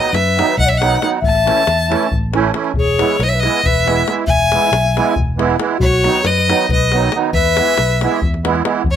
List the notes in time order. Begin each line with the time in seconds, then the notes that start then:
Already playing: D#3 F#3 B3 D#4 B4 D#5
0.05 davul high
0.13 F#2 B4 E5, davul high
0.27 davul high
0.36 D#3 F#3 B3 D#4, davul high
0.57 B1 D#5 F#5, davul low
0.66 C#5 E5
0.73 D#5
0.77 D#3 F#3 F#5
0.81 B3 D#4, davul high
0.93 davul high
1.00 D#3 F#3 B3 D#4, davul high
1.21 A1 E5, davul low
1.26 A5
1.35 davul high
1.44 E3 A3 C#4 E4, davul high
1.58 davul high
1.67 E2, davul high
1.88 E3 A3 C#4 E4, davul high
2.03 davul high
2.12 A1, davul low
2.33 E3 A3 C#4 E4, davul high
2.53 E3 A3 C#4 E4, davul high
2.64 davul high
2.74 E1 G#4, davul low
2.80 C#5
2.98 E3 G#3 B3 E4, davul high
3.10 davul high
3.19 B1 B4 D#5, davul high
3.27 C#5 E5
3.33 B4, davul high
3.39 E3 G#3 D#5, davul high
3.44 B3 E4
3.63 E1 B4 E5, davul low
3.85 E3 G#3 B3 E4, davul high
3.98 davul high
4.07 E3 G#3 B3 E4, davul high
4.26 E1 E5 G#5, davul low
4.51 E3 G#3 B3 E4, davul high
4.62 davul high
4.72 B1, davul high
4.85 davul high
4.96 E3 G#3 B3 E4, davul high
5.16 E1, davul low
5.37 E3 G#3 B3 E4, davul high
5.50 davul high
5.59 E3 G#3 B3 E4, davul high
5.78 B1 F#4 C#5, davul low
6.04 D#3 F#3 B3 D#4, davul high
6.15 davul high
6.24 F#2 B4 D#5, davul high
6.38 davul high
6.48 D#3 F#3 B3 D#4, davul high
6.69 B1 B4 D#5, davul low
6.92 D#3 F#3 B3 D#4, davul high
7.02 davul high
7.12 D#3 F#3 B3 D#4, davul high
7.33 E2 B4 E5, davul low
7.45 davul high
7.57 E3 G#3 B3 E4, davul high
7.67 davul high
7.77 B1, davul high
7.90 davul high
8.01 E3 G#3 B3 E4, davul high
8.12 davul high
8.22 E2, davul low
8.34 davul high
8.45 E3 G#3 B3 E4, davul high
8.55 davul high
8.64 E3 G#3 B3 E4, davul high
8.84 E2, davul low
8.91 C#5